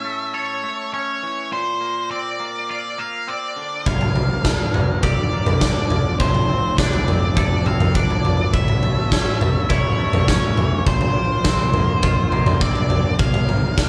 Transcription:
Already playing: A2 C#4 E5
0.05 A3
0.34 A4 C#5
0.63 A3
0.93 C#4 C#5
1.23 E3
1.52 A#2 C5
1.81 A#3
2.11 C4 D5
2.40 A#3
2.69 F4 D5
2.98 A#3 F5
3.27 C4 D5
3.56 D3
3.86 G1 G2 F5, kick, floor tom
4.01 floor tom
4.16 A#3, floor tom
4.45 D4, kick, snare
4.74 A#3, floor tom, mid tom
5.03 G4 D5, kick, floor tom, mid tom
5.33 A#3
5.46 floor tom, mid tom
5.61 D4 D5, kick, snare
5.90 F3, floor tom, mid tom
6.20 F1 F3 C5, kick, floor tom
6.34 floor tom
6.49 C4
6.78 D4 D5, kick, snare
6.93 floor tom
7.08 C4, floor tom, mid tom
7.37 A4 D5, kick, floor tom, mid tom
7.66 C4 F5, floor tom
7.80 floor tom, mid tom
7.95 D4 D5, kick
8.10 floor tom
8.24 F3, floor tom, mid tom
8.53 A1 A2 E5, kick, floor tom
8.68 floor tom
8.83 A3, floor tom
9.12 C#4, kick, snare
9.40 A3, floor tom, mid tom
9.69 E4 C#5, kick, floor tom, mid tom
9.98 A3
10.13 floor tom, mid tom
10.27 C#4, kick, snare
10.57 E3, floor tom, mid tom
10.86 A#1 A#2 C5, kick, floor tom
11.01 floor tom
11.15 A#3
11.44 C4, kick, snare
11.59 floor tom
11.73 A#3, floor tom, mid tom
12.03 F4, kick, floor tom, mid tom
12.32 A#3, floor tom
12.46 floor tom, mid tom
12.61 C4 D5, kick
12.76 floor tom
12.90 D3, floor tom, mid tom
13.19 G1 G2 F5, kick, floor tom
13.34 floor tom
13.48 A#3, floor tom
13.78 D4, kick, snare

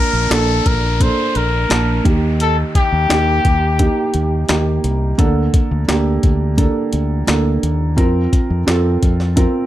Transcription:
Already playing: A#2 A#3 D4 A#4 A5, downlifter
0.13 A#1
0.30 A#1 A#3 D4 A4, snare, clap, closed hi-hat
0.66 A#1 A#4, kick, closed hi-hat
1.00 A#3 D4 A4 C5, kick, closed hi-hat
1.35 A#1 A#4, closed hi-hat
1.69 A#1 A#3 D4 A5, snare, clap, closed hi-hat
2.04 D#2 D#3 A#3 D#4 G4, kick, closed hi-hat
2.40 A4, closed hi-hat
2.75 G4, kick, closed hi-hat
2.92 D#2
3.09 D#2 A#3 D#4 G4, snare, clap, closed hi-hat
3.45 D#2, kick, closed hi-hat
3.79 A#3 D#4 G4, kick, closed hi-hat
4.14 D#2, closed hi-hat
4.49 D#2 A#3 D#4 G4, snare, clap, closed hi-hat
4.84 C2, closed hi-hat
5.18 D2 D3 A#3 D4 A4, kick, closed hi-hat
5.54 kick, closed hi-hat
5.71 D2
5.88 D2 A#3 D4 G4, snare, clap, closed hi-hat
6.23 D2, kick, closed hi-hat
6.57 A#3 D4 A4, kick, closed hi-hat
6.93 D2, closed hi-hat
7.27 D2 A#3 D4 A4, snare, clap, closed hi-hat
7.63 D#2, closed hi-hat
7.97 F2 C4 F4 A#4, kick, closed hi-hat
8.33 kick, closed hi-hat
8.50 F2
8.66 F2 C4 F4 A4, snare, clap, closed hi-hat
9.03 F2, kick, closed hi-hat
9.20 snare
9.36 C4 F4 A#4, kick, closed hi-hat

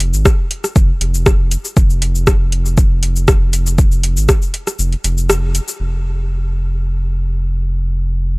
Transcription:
Already playing: F1
0.00 closed hi-hat
0.13 G#1, cabasa
0.25 kick, cross-stick, cabasa
0.51 closed hi-hat
0.64 cross-stick, cabasa
0.76 F1, kick, cabasa
1.01 F1, closed hi-hat
1.14 cabasa
1.26 kick, cross-stick, cabasa
1.51 closed hi-hat, cabasa
1.65 cabasa
1.77 F1, kick, cabasa
1.90 cabasa
2.02 closed hi-hat
2.15 cabasa
2.27 kick, cross-stick, cabasa
2.52 closed hi-hat
2.66 cabasa
2.77 kick, cabasa
3.03 closed hi-hat
3.16 cabasa
3.28 kick, cross-stick, cabasa
3.53 closed hi-hat, cabasa
3.66 cabasa
3.78 kick, cabasa
3.92 cabasa
4.03 closed hi-hat
4.17 G#1, cabasa
4.29 kick, cross-stick, cabasa
4.42 cabasa
4.54 closed hi-hat
4.67 cross-stick, cabasa
4.79 F1, cabasa
4.92 closed hi-hat
5.04 F1, closed hi-hat, cabasa
5.18 cabasa
5.30 cross-stick, cabasa
5.55 closed hi-hat, cabasa
5.68 cabasa
5.80 F1

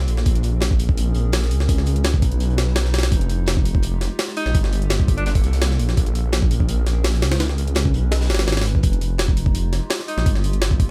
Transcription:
Already playing: A#3 F4 G4 A4
0.08 A#1, closed hi-hat, open hi-hat
0.17 snare
0.26 A#1 C4 C#4 G#4 A#4, kick, closed hi-hat, open hi-hat
0.35 closed hi-hat
0.43 closed hi-hat, open hi-hat
0.61 snare, closed hi-hat, open hi-hat
0.71 kick
0.79 closed hi-hat, open hi-hat
0.89 kick
0.97 closed hi-hat, open hi-hat
1.15 A#1, closed hi-hat
1.32 snare, closed hi-hat, open hi-hat
1.42 snare
1.51 C#2, closed hi-hat, open hi-hat
1.60 snare
1.69 D#4 E4 B4, kick, closed hi-hat, open hi-hat
1.78 snare
1.86 closed hi-hat, open hi-hat
1.96 closed hi-hat
2.04 snare, closed hi-hat, open hi-hat
2.14 kick
2.22 B1, kick, closed hi-hat, open hi-hat
2.32 closed hi-hat
2.40 closed hi-hat, open hi-hat
2.50 closed hi-hat
2.58 snare, closed hi-hat, open hi-hat
2.67 snare
2.76 snare, closed hi-hat, open hi-hat
2.85 snare
2.94 snare, closed hi-hat, open hi-hat
2.98 snare, open hi-hat
3.03 snare, open hi-hat
3.12 F1 G#3 F4 G4, kick, closed hi-hat, open hi-hat
3.21 closed hi-hat
3.29 closed hi-hat, open hi-hat
3.46 snare, closed hi-hat, open hi-hat
3.57 kick
3.65 closed hi-hat, open hi-hat
3.75 kick
3.83 closed hi-hat, open hi-hat
4.01 snare, closed hi-hat, open hi-hat
4.19 snare, closed hi-hat, open hi-hat
4.28 snare
4.37 D#4, closed hi-hat, open hi-hat
4.46 A#1, snare
4.54 G1 A#3 A4, kick, closed hi-hat, open hi-hat
4.64 snare
4.73 closed hi-hat, open hi-hat
4.82 closed hi-hat
4.90 snare, closed hi-hat, open hi-hat
5.00 kick
5.08 kick, closed hi-hat, open hi-hat
5.17 D4, closed hi-hat
5.26 D4, snare, closed hi-hat, open hi-hat
5.35 kick, open hi-hat
5.44 C2, closed hi-hat
5.53 snare, open hi-hat
5.62 snare, closed hi-hat, open hi-hat
5.71 snare
5.79 A#1, closed hi-hat, open hi-hat
5.89 snare
5.97 A#1 C4 C#4 G#4 A#4, kick, closed hi-hat, open hi-hat
6.06 closed hi-hat
6.15 closed hi-hat, open hi-hat
6.33 snare, closed hi-hat, open hi-hat
6.42 kick
6.51 closed hi-hat, open hi-hat
6.60 kick
6.69 closed hi-hat, open hi-hat
6.87 A#1, snare, closed hi-hat, open hi-hat
7.04 snare, closed hi-hat, open hi-hat
7.14 snare
7.22 C#2, snare, closed hi-hat, open hi-hat
7.32 snare, open hi-hat
7.40 C#4 D#4 E4 B4, snare, closed hi-hat, open hi-hat
7.49 snare
7.58 closed hi-hat, open hi-hat
7.67 closed hi-hat
7.75 snare, closed hi-hat, open hi-hat
7.85 kick
7.94 B1, closed hi-hat
8.12 snare, closed hi-hat, open hi-hat
8.21 snare, closed hi-hat
8.25 snare, closed hi-hat
8.30 G#1, snare, closed hi-hat, open hi-hat
8.35 snare, open hi-hat
8.39 snare, open hi-hat
8.47 G#1, snare, closed hi-hat, open hi-hat
8.52 snare, open hi-hat
8.57 snare, open hi-hat
8.61 snare, closed hi-hat, open hi-hat
8.66 snare, open hi-hat
8.75 kick
8.83 F1 G#3 D#4 F4 G4, kick, closed hi-hat, open hi-hat
8.93 closed hi-hat
9.01 closed hi-hat, open hi-hat
9.18 snare, closed hi-hat, open hi-hat
9.28 kick
9.37 closed hi-hat, open hi-hat
9.46 kick
9.55 closed hi-hat, open hi-hat
9.73 snare, closed hi-hat, open hi-hat
9.90 snare, closed hi-hat, open hi-hat
9.99 snare
10.08 D#4, closed hi-hat, open hi-hat
10.17 A#1, snare
10.26 G1 A#3 A4, kick, closed hi-hat, open hi-hat
10.35 snare
10.44 closed hi-hat, open hi-hat
10.53 closed hi-hat
10.62 snare, closed hi-hat, open hi-hat
10.71 kick
10.80 kick, closed hi-hat, open hi-hat

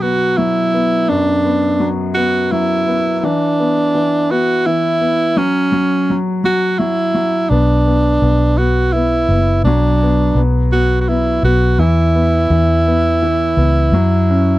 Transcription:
Already playing: B2 F#3 B3
0.01 B3 F#4
0.37 F#3 E4
0.74 B3
1.09 F#2 D4
1.45 B3
1.80 F#3
2.15 B3 F#4
2.52 F#3 E4
2.87 B3
3.19 E4
3.23 E3 D4
3.60 B3
3.95 E3
4.31 B3 F#4
4.66 E3 E4
5.01 B3
5.37 F#3 C#4
5.72 F#3
6.10 F#3
6.44 F#3 F#4
6.79 F#3 E4
7.14 F#3
7.50 B1 B3 D4
7.87 B3
8.22 B1 B3
8.58 B3 F#4
8.93 B3 E4
9.28 F#1 B3
9.64 B1 F#3 D4
10.03 B3
10.35 B1 B3
10.72 B3 F#4
11.01 F#4
11.09 B3 E4
11.43 B1 B3 F#4
11.79 E2 E3 E4
12.15 B3
12.50 E2 E3
12.88 B3
13.22 E3
13.57 C#2 B3
13.92 F#2 F#3
14.30 C#4

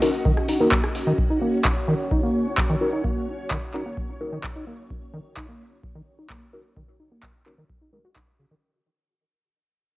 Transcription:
Already playing: C#4 F#4 D#5
0.02 C#4 D#4 F#4 A#4, open hi-hat
0.25 D#3, kick
0.37 cross-stick
0.48 D#4, open hi-hat
0.60 A#3 C#4 D#4 F#4 A#4
0.72 kick, clap
0.84 F#4, cross-stick
0.95 open hi-hat
1.07 D#3
1.18 C#5, kick
1.30 D#4
1.42 A#3
1.65 F#4, kick, clap
1.88 D#3
2.11 D#4, kick
2.23 A#3
2.46 F#4
2.58 kick, clap
2.70 D#3
2.81 C#4 D#4 F#4 A#4
2.93 D#4
3.04 A#3, kick
3.28 F#4
3.51 D#3, kick, clap
3.74 C#4 D#4 F#4 A#4, clap
3.86 A#3
3.97 kick
4.09 F#4
4.21 C#4 D#4 F#4 A#4
4.33 D#3
4.44 kick, clap
4.56 D#4
4.67 A#3
4.90 F#4, kick
5.14 D#3
5.37 D#4, kick, clap
5.49 A#3
5.72 F#4
5.83 kick
5.95 D#3
6.19 D#4
6.30 A#3, kick, clap
6.53 C#4 D#4 F#4 A#4
6.76 D#3, kick
7.00 D#4
7.12 A#3
7.23 kick, clap
7.35 F#4
7.46 C#4 D#4 F#4 A#4, clap
7.58 D#3
7.69 kick
7.81 D#4
7.93 G#3 C#4 D#4 F#4 A#4
8.05 F#4
8.16 D#4, kick, clap
8.39 C#3
8.51 D#3

